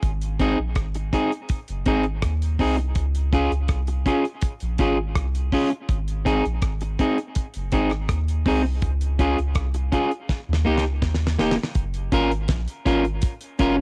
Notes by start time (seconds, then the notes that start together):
0.03 G#1, kick, closed hi-hat
0.21 closed hi-hat
0.39 C4 D#4 G#4, kick, closed hi-hat
0.59 A#1
0.75 G#1, kick, cross-stick, closed hi-hat
0.94 muted clean electric guitar stroke, closed hi-hat
1.13 C4 D#4 G#4, kick, closed hi-hat
1.32 closed hi-hat
1.49 kick, closed hi-hat
1.68 F#1, closed hi-hat
1.85 G#1 C4 D#4 G#4, kick, closed hi-hat
2.03 closed hi-hat
2.22 D#2, kick, cross-stick, closed hi-hat
2.42 closed hi-hat
2.59 C2 C4 D#4 G#4, kick, open hi-hat
2.77 muted clean electric guitar stroke, closed hi-hat
2.95 C#2, kick, closed hi-hat
3.15 closed hi-hat
3.33 C#4 F4 G#4, kick, closed hi-hat
3.51 C#2, closed hi-hat
3.68 C2, kick, cross-stick, closed hi-hat
3.87 muted clean electric guitar stroke, closed hi-hat
4.06 C#4 F4 G#4, kick, closed hi-hat
4.25 closed hi-hat
4.42 kick, closed hi-hat
4.60 A#1, closed hi-hat
4.78 G#1 C#4 F4 G#4, kick, closed hi-hat
5.16 C2, kick, cross-stick, closed hi-hat
5.35 closed hi-hat
5.52 C#4 F4 G#4, kick, open hi-hat
5.70 muted clean electric guitar stroke, closed hi-hat
5.89 G#1, kick, closed hi-hat
6.08 closed hi-hat
6.25 C4 D#4 G#4, kick, closed hi-hat
6.45 A#1, closed hi-hat
6.62 G#1, kick, cross-stick, closed hi-hat
6.81 muted clean electric guitar stroke, closed hi-hat
6.99 C4 D#4 G#4, kick, closed hi-hat
7.18 closed hi-hat
7.35 kick, closed hi-hat
7.54 F#1, closed hi-hat
7.72 G#1 C4 D#4 G#4, kick, closed hi-hat
7.90 cross-stick, closed hi-hat
8.09 D#2, kick, cross-stick, closed hi-hat
8.28 closed hi-hat
8.46 C2 C4 D#4 G#4, kick, open hi-hat
8.64 muted clean electric guitar stroke
8.82 C#2, kick, closed hi-hat
9.01 closed hi-hat
9.19 C#4 F4 G#4, kick, closed hi-hat
9.38 C#2, closed hi-hat
9.55 C2, kick, cross-stick, closed hi-hat
9.74 muted clean electric guitar stroke, closed hi-hat
9.92 C#4 F4 G#4, kick, closed hi-hat
10.11 closed hi-hat
10.29 kick, snare
10.49 D#2
10.53 snare
10.65 C#2 A#3 D#4 G4
10.78 snare
11.02 D#2, kick, snare
11.15 snare
11.27 snare
11.39 D#1 A#3 D#4 G4, snare
11.51 snare
11.57 muted clean electric guitar stroke
11.64 snare
11.75 F#1, kick, closed hi-hat
11.94 closed hi-hat
12.12 G#1 C#4 F4 A#4, kick, closed hi-hat
12.32 closed hi-hat
12.48 A#1, kick, snare, closed hi-hat
12.68 closed hi-hat
12.86 G#1 C#4 F4 A#4, kick, closed hi-hat
13.05 closed hi-hat
13.22 kick, closed hi-hat
13.41 closed hi-hat
13.59 F#1 C#4 F4 A#4, kick, closed hi-hat